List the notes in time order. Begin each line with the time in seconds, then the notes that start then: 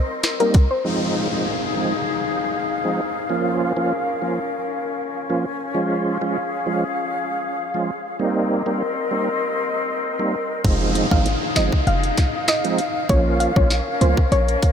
Already playing: C4 A#4 D#5
0.23 finger snap, cross-stick, snare, closed hi-hat
0.40 G3 A#3 C4 D#4 A#4, closed hi-hat
0.54 C2, kick, closed hi-hat
0.71 C5
0.85 F3 G#3 C4 D#4 G#4 F5, downlifter
1.31 F3 G#3 C4 D#4
1.77 F3 G#3 C4 D#4
2.85 F3 G#3 C4 D#4
3.29 F3 A#3 C#4 F4 A#4
3.77 F3 A#3 C#4 F4
4.22 F3 A#3 C#4 F4
5.30 F3 A#3 C#4 F4
5.74 F3 G#3 C#4 F4 G#4 F5
6.21 F3 G#3 C#4 F4
6.66 F3 G#3 C#4 F4
7.74 F3 G#3 C#4 F4
8.19 G3 A#3 C4 D#4 A#4 D#5
8.66 G3 A#3 C4 D#4
9.11 G3 A#3 C4 D#4
10.19 G3 A#3 C4 D#4
10.64 F1 F3 G#3 C4 D#4 G#4 F5, kick, closed hi-hat, downlifter
10.95 closed hi-hat
11.11 G#1 F3 G#3 C4 D#4 F5, kick
11.26 closed hi-hat
11.56 G1 F3 G#3 C4 D#4 D#5, finger snap, snare, closed hi-hat
11.72 kick
11.87 F1 F5, closed hi-hat
12.03 closed hi-hat
12.17 kick, snare, closed hi-hat
12.48 D#5, finger snap, cross-stick, snare, closed hi-hat
12.64 F3 G#3 C4 D#4, closed hi-hat
12.78 closed hi-hat
13.09 A#1 F3 A#3 C#4 F4 A#4 C#5, kick, closed hi-hat
13.40 F5, closed hi-hat
13.56 A#1 F3 A#3 C#4 F4 C#5, kick
13.70 snare, closed hi-hat
14.01 C#2 F3 A#3 C#4 F4 C5, closed hi-hat
14.17 kick
14.32 A#1 C#5, closed hi-hat
14.48 closed hi-hat
14.62 kick, closed hi-hat